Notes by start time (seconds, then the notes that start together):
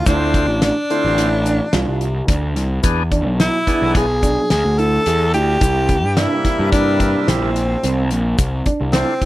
0.06 D2 D3 A3 C4 D4 E4 F4, kick, closed hi-hat, shaker
0.34 kick, closed hi-hat
0.48 A1
0.62 D4, snare, closed hi-hat
0.90 D3 A3 C4 E4 F4, closed hi-hat, shaker
1.05 A1
1.18 E4, closed hi-hat
1.46 D4, closed hi-hat, shaker
1.73 C2 F4, snare, closed hi-hat
1.88 C2
2.01 closed hi-hat
2.28 D2 D4, kick, closed hi-hat, shaker
2.56 C2, snare, closed hi-hat
2.83 E2 E3 B3 D4 G#4, kick, closed hi-hat, shaker
3.11 D4, kick, closed hi-hat
3.26 B1
3.39 E4, snare, closed hi-hat
3.67 E3 B3 D4 E4 G#4, kick, closed hi-hat
3.82 B1
3.95 G#4, kick, closed hi-hat, shaker
4.23 D4, kick, closed hi-hat, shaker
4.50 D2 G#4, snare, closed hi-hat
4.65 D2
4.79 E4 A4, closed hi-hat
5.06 E2 G#4, closed hi-hat
5.34 D2 E4 G4, closed hi-hat
5.61 C2 E4, kick, closed hi-hat, shaker
5.89 kick, closed hi-hat
6.04 G2
6.16 C3 G3 A#3 D4 E4, snare, closed hi-hat
6.45 E4, kick, snare, closed hi-hat
6.59 G2
6.72 C3 G3 A#3 D4 E4, kick, closed hi-hat, shaker
6.99 D4, kick, closed hi-hat
7.27 A#1 C4 E4, snare, closed hi-hat
7.42 A#1
7.56 closed hi-hat
7.83 C2 C4, closed hi-hat
8.11 A#1, closed hi-hat
8.38 C2, kick, closed hi-hat, shaker
8.66 D4, kick, closed hi-hat
8.81 C2
8.93 A3 C4 D4 E4 F4, snare, closed hi-hat
9.22 kick, closed hi-hat